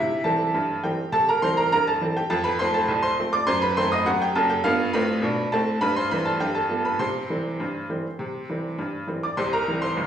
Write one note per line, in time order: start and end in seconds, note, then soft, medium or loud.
0.00 0.21 C3 medium
0.00 0.24 E4 medium
0.00 0.25 E5 medium
0.24 0.41 E3 medium
0.24 0.41 G3 medium
0.24 0.41 C4 medium
0.24 0.80 A4 medium
0.24 0.83 A5 medium
0.54 0.79 G2 medium
0.84 1.00 E3 soft
0.84 1.00 G3 medium
0.84 1.01 C4 medium
0.84 1.12 G4 medium
0.84 1.13 G5 medium
1.12 1.38 C3 medium
1.12 1.27 A4 medium
1.12 1.27 A5 loud
1.29 1.42 A#4 medium
1.29 1.43 A#5 medium
1.42 1.58 E3 medium
1.42 1.59 G3 medium
1.42 1.59 C4 medium
1.42 1.57 C5 medium
1.42 1.57 C6 loud
1.57 1.72 A#4 medium
1.57 1.71 A#5 medium
1.72 1.97 G2 medium
1.72 1.86 A#4 medium
1.72 1.87 A#5 loud
1.88 2.15 A4 medium
1.88 2.16 A5 medium
2.01 2.17 E3 medium
2.01 2.18 G3 soft
2.01 2.18 C4 medium
2.17 2.31 G4 medium
2.17 2.31 G5 medium
2.30 2.55 F2 loud
2.30 2.45 A4 medium
2.30 2.45 A5 loud
2.44 2.59 B4 medium
2.44 2.59 B5 loud
2.59 2.76 F3 medium
2.59 2.76 A3 medium
2.59 2.76 C4 medium
2.59 2.74 C5 medium
2.59 2.74 C6 loud
2.74 3.02 A4 medium
2.74 3.03 A5 medium
2.88 3.13 C2 medium
3.03 3.31 C5 medium
3.03 3.32 C6 loud
3.19 3.35 F3 medium
3.19 3.35 A3 medium
3.19 3.36 C4 medium
3.33 3.47 D5 medium
3.33 3.48 D6 loud
3.47 3.72 F#2 loud
3.47 3.62 C5 medium
3.47 3.62 C6 loud
3.62 3.77 B4 medium
3.62 3.77 B5 loud
3.77 3.93 D#3 medium
3.77 3.94 A3 medium
3.77 3.94 C4 medium
3.77 3.91 C5 medium
3.77 3.92 C6 loud
3.92 4.06 D#5 medium
3.92 4.07 D#6 loud
4.06 4.31 F#2 medium
4.06 4.21 F#4 medium
4.06 4.21 F#5 loud
4.22 4.36 G4 medium
4.22 4.36 G5 loud
4.35 4.59 F#1 medium
4.35 4.59 F#2 medium
4.35 4.50 A4 medium
4.35 4.50 A5 loud
4.50 4.64 G4 medium
4.50 4.65 G5 medium
4.64 4.88 G2 medium
4.64 4.89 B3 medium
4.64 4.92 F4 medium
4.64 4.94 F5 loud
4.93 5.17 A2 medium
4.93 5.18 C4 medium
4.93 5.49 B4 medium
4.93 5.52 B5 loud
5.22 5.46 B2 medium
5.22 5.47 D4 medium
5.52 5.76 A2 medium
5.52 5.77 C4 medium
5.52 5.80 A4 medium
5.52 5.82 A5 loud
5.81 6.07 G2 loud
5.81 5.96 B4 medium
5.81 5.96 B5 loud
5.96 6.11 C5 medium
5.96 6.11 C6 loud
6.11 6.28 E3 medium
6.11 6.28 G3 medium
6.11 6.28 C4 medium
6.11 6.26 B4 medium
6.11 6.26 B5 loud
6.25 6.40 A4 medium
6.25 6.40 A5 medium
6.40 6.66 G2 medium
6.40 6.55 G4 medium
6.40 6.55 G5 medium
6.55 6.83 A4 medium
6.55 6.85 A5 medium
6.69 6.86 F3 soft
6.69 6.86 G3 soft
6.69 6.86 B3 soft
6.85 6.99 B4 medium
6.85 7.00 B5 medium
6.99 7.25 C3 medium
6.99 8.74 C5 medium
6.99 8.77 C6 medium
7.30 7.46 E3 medium
7.30 7.46 G3 soft
7.30 7.47 C4 medium
7.60 7.85 G2 medium
7.90 8.06 E3 soft
7.90 8.06 G3 soft
7.90 8.06 C4 medium
8.19 8.44 C3 medium
8.49 8.65 E3 soft
8.49 8.66 G3 soft
8.49 8.66 C4 medium
8.78 9.03 G2 medium
9.07 9.24 E3 soft
9.07 9.24 G3 soft
9.07 9.24 C4 medium
9.23 9.37 D5 medium
9.23 9.37 D6 medium
9.37 9.62 C2 medium
9.37 9.62 C3 medium
9.37 9.51 C5 medium
9.37 9.52 C6 medium
9.53 9.80 A#4 medium
9.53 9.82 A#5 medium
9.68 9.84 E3 medium
9.68 9.84 G3 soft
9.68 9.84 C4 medium
9.82 10.07 C5 medium
9.82 10.07 C6 medium
9.97 10.07 G1 medium
9.97 10.07 G2 medium